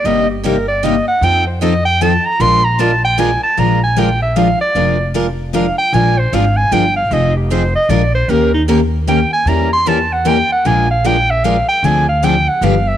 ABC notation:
X:1
M:3/4
L:1/8
Q:"Swing" 1/4=153
K:Bbmix
V:1 name="Clarinet"
e G B d e _g | g c e g =a b | c' b =a g _a =a | b a g =e f d- |
d2 z2 f g | a c f a g f | e G c e d c | B E z2 g a |
b c' =a _g =g _g | a f g =e f g | a f g _g f =e |]
V:2 name="Steel-string acoustic guitar"
[C,G,B,EG] z [C,G,B,EG] z [C,G,B,EG] z | [F,CE=A] z [F,CEA] z [F,CEA] z | [F,A,DFB] z [F,A,DFB] z [F,A,DFB] z | [F,A,DFB] z [F,A,DFB] z [F,A,DFB] z |
[F,A,DFB] z [F,A,DFB] z [F,A,DFB] z | [F,A,DFB] z [F,A,DFB] z [F,A,DFB] z | [F,CEA] z [F,CEA] z [F,A,DFB] z | [E,B,_DGB] z [E,B,DGB] z [E,B,DGB] z |
[=E,B,^CG] z [E,B,CG] z [E,B,CG] z | [F,A,DFB] z [F,A,DFB] z [F,A,DFB] z | [D,F,CDA] z [D,F,CDA] z [D,F,=B,DG] z |]
V:3 name="Steel-string acoustic guitar"
[C,G,B,EG] z [C,G,B,EG] z [C,G,B,EG] z | [F,CE=A] z [F,CEA] z [F,CEA] z | [F,A,DFB] z [F,A,DFB] z [F,A,DFB] z | [F,A,DFB] z [F,A,DFB] z [F,A,DFB] z |
[F,A,DFB] z [F,A,DFB] z [F,A,DFB] z | [F,A,DFB] z [F,A,DFB] z [F,A,DFB] z | [F,CEA] z [F,CEA] z [F,A,DFB] z | [E,B,_DGB] z [E,B,DGB] z [E,B,DGB] z |
[=E,G,^C=EB] z [E,G,CEB] z [E,G,CEB] z | [F,A,DFB] z [F,A,DFB] z [F,A,DFB] z | [D,F,CDA] z [D,F,CDA] z [D,F,=B,DG] z |]
V:4 name="Upright bass" clef=bass
G,,,6 | F,,6 | B,,,6 | B,,,6 |
F,,,6 | B,,,2 A,,,2 G,,,2 | F,,,4 B,,,2 | E,,6 |
=E,,6 | B,,,6 | D,,4 G,,,2 |]